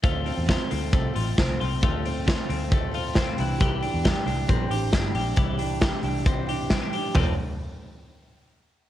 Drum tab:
CC |--------|--------|--------|--------|
HH |xoxoxoxo|xoxoxoxo|xoxoxoxo|xoxoxoxo|
SD |--o---o-|--o---o-|--o---o-|--o---o-|
FT |--------|--------|--------|--------|
BD |o-o-o-o-|o-o-o-o-|o-o-o-o-|o-o-o-o-|

CC |x-------|
HH |--------|
SD |--------|
FT |o-------|
BD |o-------|